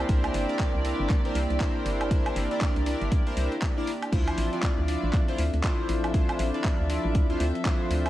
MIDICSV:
0, 0, Header, 1, 6, 480
1, 0, Start_track
1, 0, Key_signature, -1, "minor"
1, 0, Tempo, 504202
1, 88, Time_signature, 4, 2, 24, 8
1, 7709, End_track
2, 0, Start_track
2, 0, Title_t, "String section"
2, 0, Program_c, 0, 48
2, 0, Note_on_c, 0, 60, 89
2, 0, Note_on_c, 0, 67, 89
2, 0, Note_on_c, 0, 74, 93
2, 3929, Note_on_c, 0, 62, 79
2, 4575, Note_off_c, 0, 60, 0
2, 4661, Note_off_c, 0, 67, 0
2, 4669, Note_on_c, 0, 76, 78
2, 4849, Note_on_c, 0, 69, 78
2, 5664, Note_off_c, 0, 74, 0
2, 7709, Note_off_c, 0, 62, 0
2, 7709, Note_off_c, 0, 69, 0
2, 7709, Note_off_c, 0, 76, 0
2, 7709, End_track
3, 0, Start_track
3, 0, Title_t, "Analog polysynth"
3, 0, Program_c, 1, 90
3, 82, Note_on_c, 1, 62, 94
3, 85, Note_on_c, 1, 64, 82
3, 89, Note_on_c, 1, 70, 82
3, 93, Note_on_c, 1, 72, 100
3, 433, Note_off_c, 1, 62, 0
3, 435, Note_off_c, 1, 64, 0
3, 437, Note_off_c, 1, 70, 0
3, 439, Note_off_c, 1, 72, 0
3, 464, Note_on_c, 1, 62, 80
3, 468, Note_on_c, 1, 64, 70
3, 472, Note_on_c, 1, 70, 74
3, 476, Note_on_c, 1, 74, 86
3, 781, Note_off_c, 1, 62, 0
3, 783, Note_off_c, 1, 64, 0
3, 785, Note_off_c, 1, 70, 0
3, 787, Note_off_c, 1, 74, 0
3, 800, Note_on_c, 1, 62, 76
3, 804, Note_on_c, 1, 64, 70
3, 808, Note_on_c, 1, 70, 73
3, 811, Note_on_c, 1, 74, 86
3, 1152, Note_off_c, 1, 62, 0
3, 1154, Note_off_c, 1, 64, 0
3, 1156, Note_off_c, 1, 70, 0
3, 1158, Note_off_c, 1, 74, 0
3, 1185, Note_on_c, 1, 62, 90
3, 1189, Note_on_c, 1, 64, 81
3, 1192, Note_on_c, 1, 70, 86
3, 1196, Note_on_c, 1, 72, 108
3, 1320, Note_off_c, 1, 62, 0
3, 1321, Note_off_c, 1, 64, 0
3, 1323, Note_off_c, 1, 70, 0
3, 1325, Note_off_c, 1, 72, 0
3, 1522, Note_on_c, 1, 62, 80
3, 1525, Note_on_c, 1, 64, 79
3, 1529, Note_on_c, 1, 70, 78
3, 1533, Note_on_c, 1, 72, 96
3, 1981, Note_off_c, 1, 62, 0
3, 1983, Note_off_c, 1, 64, 0
3, 1985, Note_off_c, 1, 70, 0
3, 1987, Note_off_c, 1, 72, 0
3, 2002, Note_on_c, 1, 62, 93
3, 2006, Note_on_c, 1, 64, 86
3, 2009, Note_on_c, 1, 70, 82
3, 2013, Note_on_c, 1, 72, 100
3, 2353, Note_off_c, 1, 62, 0
3, 2355, Note_off_c, 1, 64, 0
3, 2357, Note_off_c, 1, 70, 0
3, 2359, Note_off_c, 1, 72, 0
3, 2384, Note_on_c, 1, 62, 75
3, 2387, Note_on_c, 1, 64, 73
3, 2391, Note_on_c, 1, 70, 69
3, 2395, Note_on_c, 1, 74, 87
3, 2701, Note_off_c, 1, 62, 0
3, 2702, Note_off_c, 1, 64, 0
3, 2704, Note_off_c, 1, 70, 0
3, 2706, Note_off_c, 1, 74, 0
3, 2721, Note_on_c, 1, 62, 77
3, 2725, Note_on_c, 1, 64, 77
3, 2728, Note_on_c, 1, 70, 70
3, 2732, Note_on_c, 1, 74, 88
3, 3073, Note_off_c, 1, 62, 0
3, 3075, Note_off_c, 1, 64, 0
3, 3076, Note_off_c, 1, 70, 0
3, 3078, Note_off_c, 1, 74, 0
3, 3104, Note_on_c, 1, 62, 88
3, 3108, Note_on_c, 1, 64, 81
3, 3112, Note_on_c, 1, 70, 89
3, 3115, Note_on_c, 1, 72, 103
3, 3185, Note_off_c, 1, 62, 0
3, 3187, Note_off_c, 1, 64, 0
3, 3188, Note_off_c, 1, 70, 0
3, 3190, Note_off_c, 1, 72, 0
3, 3201, Note_on_c, 1, 62, 76
3, 3205, Note_on_c, 1, 64, 69
3, 3208, Note_on_c, 1, 70, 67
3, 3212, Note_on_c, 1, 72, 83
3, 3371, Note_off_c, 1, 62, 0
3, 3373, Note_off_c, 1, 64, 0
3, 3374, Note_off_c, 1, 70, 0
3, 3376, Note_off_c, 1, 72, 0
3, 3585, Note_on_c, 1, 62, 94
3, 3588, Note_on_c, 1, 64, 87
3, 3592, Note_on_c, 1, 70, 84
3, 3596, Note_on_c, 1, 74, 107
3, 3719, Note_off_c, 1, 62, 0
3, 3721, Note_off_c, 1, 64, 0
3, 3723, Note_off_c, 1, 70, 0
3, 3725, Note_off_c, 1, 74, 0
3, 3921, Note_on_c, 1, 62, 90
3, 3924, Note_on_c, 1, 64, 79
3, 3929, Note_on_c, 1, 65, 82
3, 3932, Note_on_c, 1, 72, 102
3, 4273, Note_off_c, 1, 62, 0
3, 4275, Note_off_c, 1, 64, 0
3, 4277, Note_off_c, 1, 65, 0
3, 4279, Note_off_c, 1, 72, 0
3, 4304, Note_on_c, 1, 62, 74
3, 4307, Note_on_c, 1, 64, 73
3, 4311, Note_on_c, 1, 65, 73
3, 4315, Note_on_c, 1, 74, 86
3, 4621, Note_off_c, 1, 62, 0
3, 4622, Note_off_c, 1, 64, 0
3, 4624, Note_off_c, 1, 65, 0
3, 4626, Note_off_c, 1, 74, 0
3, 4640, Note_on_c, 1, 62, 78
3, 4644, Note_on_c, 1, 64, 74
3, 4647, Note_on_c, 1, 65, 69
3, 4652, Note_on_c, 1, 74, 90
3, 4992, Note_off_c, 1, 62, 0
3, 4994, Note_off_c, 1, 64, 0
3, 4996, Note_off_c, 1, 65, 0
3, 4998, Note_off_c, 1, 74, 0
3, 5024, Note_on_c, 1, 62, 94
3, 5028, Note_on_c, 1, 64, 82
3, 5031, Note_on_c, 1, 65, 82
3, 5035, Note_on_c, 1, 72, 103
3, 5159, Note_off_c, 1, 62, 0
3, 5161, Note_off_c, 1, 64, 0
3, 5163, Note_off_c, 1, 65, 0
3, 5165, Note_off_c, 1, 72, 0
3, 5361, Note_on_c, 1, 62, 87
3, 5364, Note_on_c, 1, 64, 78
3, 5368, Note_on_c, 1, 65, 76
3, 5372, Note_on_c, 1, 72, 89
3, 5821, Note_off_c, 1, 62, 0
3, 5823, Note_off_c, 1, 64, 0
3, 5825, Note_off_c, 1, 65, 0
3, 5826, Note_off_c, 1, 72, 0
3, 5841, Note_on_c, 1, 62, 89
3, 5845, Note_on_c, 1, 64, 81
3, 5849, Note_on_c, 1, 65, 82
3, 5852, Note_on_c, 1, 72, 103
3, 6193, Note_off_c, 1, 62, 0
3, 6195, Note_off_c, 1, 64, 0
3, 6197, Note_off_c, 1, 65, 0
3, 6198, Note_off_c, 1, 72, 0
3, 6224, Note_on_c, 1, 62, 79
3, 6228, Note_on_c, 1, 64, 68
3, 6232, Note_on_c, 1, 65, 72
3, 6236, Note_on_c, 1, 74, 85
3, 6541, Note_off_c, 1, 62, 0
3, 6543, Note_off_c, 1, 64, 0
3, 6545, Note_off_c, 1, 65, 0
3, 6547, Note_off_c, 1, 74, 0
3, 6561, Note_on_c, 1, 62, 80
3, 6565, Note_on_c, 1, 64, 74
3, 6569, Note_on_c, 1, 65, 73
3, 6572, Note_on_c, 1, 74, 88
3, 6913, Note_off_c, 1, 62, 0
3, 6915, Note_off_c, 1, 64, 0
3, 6917, Note_off_c, 1, 65, 0
3, 6918, Note_off_c, 1, 74, 0
3, 6944, Note_on_c, 1, 62, 88
3, 6948, Note_on_c, 1, 64, 82
3, 6951, Note_on_c, 1, 65, 90
3, 6955, Note_on_c, 1, 72, 106
3, 7079, Note_off_c, 1, 62, 0
3, 7081, Note_off_c, 1, 64, 0
3, 7082, Note_off_c, 1, 65, 0
3, 7084, Note_off_c, 1, 72, 0
3, 7281, Note_on_c, 1, 62, 86
3, 7284, Note_on_c, 1, 64, 77
3, 7288, Note_on_c, 1, 65, 75
3, 7292, Note_on_c, 1, 72, 91
3, 7709, Note_off_c, 1, 62, 0
3, 7709, Note_off_c, 1, 64, 0
3, 7709, Note_off_c, 1, 65, 0
3, 7709, Note_off_c, 1, 72, 0
3, 7709, End_track
4, 0, Start_track
4, 0, Title_t, "Analog synth pad"
4, 0, Program_c, 2, 89
4, 0, Note_on_c, 2, 58, 79
4, 0, Note_on_c, 2, 62, 74
4, 0, Note_on_c, 2, 64, 91
4, 3889, Note_off_c, 2, 58, 0
4, 3889, Note_off_c, 2, 62, 0
4, 3889, Note_off_c, 2, 64, 0
4, 3926, Note_on_c, 2, 53, 89
4, 3926, Note_on_c, 2, 60, 85
4, 3926, Note_on_c, 2, 76, 74
4, 7709, Note_off_c, 2, 53, 0
4, 7709, Note_off_c, 2, 60, 0
4, 7709, Note_off_c, 2, 76, 0
4, 7709, End_track
5, 0, Start_track
5, 0, Title_t, "FM bass"
5, 0, Program_c, 3, 39
5, 87, Note_on_c, 3, 36, 105
5, 286, Note_off_c, 3, 36, 0
5, 327, Note_on_c, 3, 31, 88
5, 441, Note_off_c, 3, 31, 0
5, 709, Note_on_c, 3, 36, 86
5, 890, Note_off_c, 3, 36, 0
5, 949, Note_on_c, 3, 31, 96
5, 1026, Note_off_c, 3, 31, 0
5, 1286, Note_on_c, 3, 36, 96
5, 1400, Note_off_c, 3, 36, 0
5, 1429, Note_on_c, 3, 36, 94
5, 1506, Note_off_c, 3, 36, 0
5, 1766, Note_on_c, 3, 31, 81
5, 2214, Note_off_c, 3, 31, 0
5, 2247, Note_on_c, 3, 31, 88
5, 2361, Note_off_c, 3, 31, 0
5, 2630, Note_on_c, 3, 36, 85
5, 2810, Note_off_c, 3, 36, 0
5, 2870, Note_on_c, 3, 31, 94
5, 2947, Note_off_c, 3, 31, 0
5, 3207, Note_on_c, 3, 36, 98
5, 3320, Note_off_c, 3, 36, 0
5, 3928, Note_on_c, 3, 38, 97
5, 4127, Note_off_c, 3, 38, 0
5, 4168, Note_on_c, 3, 33, 88
5, 4281, Note_off_c, 3, 33, 0
5, 4551, Note_on_c, 3, 38, 88
5, 4731, Note_off_c, 3, 38, 0
5, 4791, Note_on_c, 3, 33, 97
5, 4867, Note_off_c, 3, 33, 0
5, 5127, Note_on_c, 3, 38, 97
5, 5240, Note_off_c, 3, 38, 0
5, 5271, Note_on_c, 3, 38, 91
5, 5347, Note_off_c, 3, 38, 0
5, 5608, Note_on_c, 3, 33, 78
5, 6055, Note_off_c, 3, 33, 0
5, 6088, Note_on_c, 3, 33, 87
5, 6201, Note_off_c, 3, 33, 0
5, 6471, Note_on_c, 3, 38, 85
5, 6651, Note_off_c, 3, 38, 0
5, 6709, Note_on_c, 3, 33, 93
5, 6808, Note_on_c, 3, 38, 92
5, 6822, Note_off_c, 3, 33, 0
5, 7007, Note_off_c, 3, 38, 0
5, 7048, Note_on_c, 3, 38, 98
5, 7161, Note_off_c, 3, 38, 0
5, 7527, Note_on_c, 3, 38, 78
5, 7709, Note_off_c, 3, 38, 0
5, 7709, End_track
6, 0, Start_track
6, 0, Title_t, "Drums"
6, 86, Note_on_c, 9, 42, 83
6, 87, Note_on_c, 9, 36, 111
6, 181, Note_off_c, 9, 42, 0
6, 182, Note_off_c, 9, 36, 0
6, 228, Note_on_c, 9, 42, 49
6, 228, Note_on_c, 9, 76, 79
6, 324, Note_off_c, 9, 42, 0
6, 324, Note_off_c, 9, 76, 0
6, 326, Note_on_c, 9, 46, 102
6, 421, Note_off_c, 9, 46, 0
6, 470, Note_on_c, 9, 42, 38
6, 563, Note_on_c, 9, 39, 110
6, 565, Note_off_c, 9, 42, 0
6, 567, Note_on_c, 9, 36, 100
6, 567, Note_on_c, 9, 42, 76
6, 658, Note_off_c, 9, 39, 0
6, 662, Note_off_c, 9, 36, 0
6, 662, Note_off_c, 9, 42, 0
6, 806, Note_on_c, 9, 46, 97
6, 901, Note_off_c, 9, 46, 0
6, 1043, Note_on_c, 9, 39, 60
6, 1047, Note_on_c, 9, 36, 121
6, 1047, Note_on_c, 9, 42, 84
6, 1138, Note_off_c, 9, 39, 0
6, 1142, Note_off_c, 9, 36, 0
6, 1142, Note_off_c, 9, 42, 0
6, 1191, Note_on_c, 9, 42, 37
6, 1286, Note_off_c, 9, 42, 0
6, 1288, Note_on_c, 9, 46, 103
6, 1383, Note_off_c, 9, 46, 0
6, 1432, Note_on_c, 9, 42, 35
6, 1524, Note_on_c, 9, 39, 109
6, 1527, Note_off_c, 9, 42, 0
6, 1527, Note_on_c, 9, 36, 90
6, 1528, Note_on_c, 9, 42, 73
6, 1619, Note_off_c, 9, 39, 0
6, 1623, Note_off_c, 9, 36, 0
6, 1623, Note_off_c, 9, 42, 0
6, 1768, Note_on_c, 9, 46, 105
6, 1863, Note_off_c, 9, 46, 0
6, 1911, Note_on_c, 9, 42, 53
6, 1911, Note_on_c, 9, 76, 78
6, 2006, Note_off_c, 9, 42, 0
6, 2006, Note_off_c, 9, 76, 0
6, 2007, Note_on_c, 9, 36, 119
6, 2008, Note_on_c, 9, 42, 86
6, 2103, Note_off_c, 9, 36, 0
6, 2103, Note_off_c, 9, 42, 0
6, 2151, Note_on_c, 9, 42, 50
6, 2151, Note_on_c, 9, 76, 81
6, 2246, Note_off_c, 9, 42, 0
6, 2246, Note_off_c, 9, 76, 0
6, 2248, Note_on_c, 9, 46, 106
6, 2343, Note_off_c, 9, 46, 0
6, 2391, Note_on_c, 9, 42, 39
6, 2484, Note_on_c, 9, 39, 117
6, 2486, Note_off_c, 9, 42, 0
6, 2487, Note_on_c, 9, 42, 79
6, 2488, Note_on_c, 9, 36, 101
6, 2579, Note_off_c, 9, 39, 0
6, 2583, Note_off_c, 9, 36, 0
6, 2583, Note_off_c, 9, 42, 0
6, 2630, Note_on_c, 9, 42, 38
6, 2726, Note_off_c, 9, 42, 0
6, 2726, Note_on_c, 9, 46, 100
6, 2821, Note_off_c, 9, 46, 0
6, 2870, Note_on_c, 9, 42, 39
6, 2965, Note_off_c, 9, 42, 0
6, 2967, Note_on_c, 9, 42, 84
6, 2968, Note_on_c, 9, 36, 122
6, 3062, Note_off_c, 9, 42, 0
6, 3063, Note_off_c, 9, 36, 0
6, 3111, Note_on_c, 9, 42, 38
6, 3206, Note_off_c, 9, 42, 0
6, 3207, Note_on_c, 9, 46, 102
6, 3302, Note_off_c, 9, 46, 0
6, 3351, Note_on_c, 9, 42, 35
6, 3444, Note_on_c, 9, 39, 121
6, 3446, Note_off_c, 9, 42, 0
6, 3448, Note_on_c, 9, 36, 97
6, 3448, Note_on_c, 9, 42, 78
6, 3539, Note_off_c, 9, 39, 0
6, 3543, Note_off_c, 9, 36, 0
6, 3543, Note_off_c, 9, 42, 0
6, 3688, Note_on_c, 9, 46, 104
6, 3783, Note_off_c, 9, 46, 0
6, 3832, Note_on_c, 9, 42, 55
6, 3832, Note_on_c, 9, 76, 74
6, 3927, Note_off_c, 9, 42, 0
6, 3927, Note_off_c, 9, 76, 0
6, 3928, Note_on_c, 9, 36, 117
6, 3928, Note_on_c, 9, 42, 83
6, 3928, Note_on_c, 9, 49, 77
6, 4023, Note_off_c, 9, 36, 0
6, 4023, Note_off_c, 9, 42, 0
6, 4023, Note_off_c, 9, 49, 0
6, 4070, Note_on_c, 9, 42, 54
6, 4070, Note_on_c, 9, 76, 77
6, 4166, Note_off_c, 9, 42, 0
6, 4166, Note_off_c, 9, 76, 0
6, 4167, Note_on_c, 9, 46, 109
6, 4262, Note_off_c, 9, 46, 0
6, 4311, Note_on_c, 9, 42, 38
6, 4403, Note_on_c, 9, 39, 123
6, 4406, Note_off_c, 9, 42, 0
6, 4407, Note_on_c, 9, 42, 80
6, 4408, Note_on_c, 9, 36, 101
6, 4498, Note_off_c, 9, 39, 0
6, 4502, Note_off_c, 9, 42, 0
6, 4503, Note_off_c, 9, 36, 0
6, 4648, Note_on_c, 9, 46, 100
6, 4743, Note_off_c, 9, 46, 0
6, 4884, Note_on_c, 9, 39, 62
6, 4887, Note_on_c, 9, 42, 82
6, 4888, Note_on_c, 9, 36, 127
6, 4979, Note_off_c, 9, 39, 0
6, 4983, Note_off_c, 9, 36, 0
6, 4983, Note_off_c, 9, 42, 0
6, 5030, Note_on_c, 9, 42, 38
6, 5125, Note_off_c, 9, 42, 0
6, 5125, Note_on_c, 9, 46, 110
6, 5221, Note_off_c, 9, 46, 0
6, 5270, Note_on_c, 9, 42, 37
6, 5364, Note_on_c, 9, 39, 123
6, 5365, Note_off_c, 9, 42, 0
6, 5367, Note_on_c, 9, 36, 100
6, 5367, Note_on_c, 9, 42, 82
6, 5459, Note_off_c, 9, 39, 0
6, 5463, Note_off_c, 9, 36, 0
6, 5463, Note_off_c, 9, 42, 0
6, 5606, Note_on_c, 9, 46, 109
6, 5702, Note_off_c, 9, 46, 0
6, 5750, Note_on_c, 9, 42, 51
6, 5750, Note_on_c, 9, 76, 78
6, 5846, Note_off_c, 9, 42, 0
6, 5846, Note_off_c, 9, 76, 0
6, 5846, Note_on_c, 9, 42, 80
6, 5847, Note_on_c, 9, 36, 122
6, 5941, Note_off_c, 9, 42, 0
6, 5942, Note_off_c, 9, 36, 0
6, 5990, Note_on_c, 9, 42, 49
6, 5990, Note_on_c, 9, 76, 79
6, 6085, Note_off_c, 9, 42, 0
6, 6085, Note_off_c, 9, 76, 0
6, 6085, Note_on_c, 9, 46, 114
6, 6180, Note_off_c, 9, 46, 0
6, 6229, Note_on_c, 9, 42, 35
6, 6322, Note_on_c, 9, 39, 127
6, 6325, Note_off_c, 9, 42, 0
6, 6325, Note_on_c, 9, 42, 76
6, 6327, Note_on_c, 9, 36, 108
6, 6417, Note_off_c, 9, 39, 0
6, 6420, Note_off_c, 9, 42, 0
6, 6422, Note_off_c, 9, 36, 0
6, 6566, Note_on_c, 9, 46, 113
6, 6661, Note_off_c, 9, 46, 0
6, 6806, Note_on_c, 9, 42, 81
6, 6807, Note_on_c, 9, 36, 127
6, 6901, Note_off_c, 9, 42, 0
6, 6902, Note_off_c, 9, 36, 0
6, 6949, Note_on_c, 9, 42, 38
6, 7044, Note_off_c, 9, 42, 0
6, 7046, Note_on_c, 9, 46, 112
6, 7141, Note_off_c, 9, 46, 0
6, 7190, Note_on_c, 9, 42, 35
6, 7283, Note_on_c, 9, 39, 122
6, 7285, Note_off_c, 9, 42, 0
6, 7287, Note_on_c, 9, 36, 100
6, 7287, Note_on_c, 9, 42, 76
6, 7378, Note_off_c, 9, 39, 0
6, 7382, Note_off_c, 9, 36, 0
6, 7382, Note_off_c, 9, 42, 0
6, 7527, Note_on_c, 9, 46, 113
6, 7622, Note_off_c, 9, 46, 0
6, 7670, Note_on_c, 9, 42, 52
6, 7670, Note_on_c, 9, 76, 75
6, 7709, Note_off_c, 9, 42, 0
6, 7709, Note_off_c, 9, 76, 0
6, 7709, End_track
0, 0, End_of_file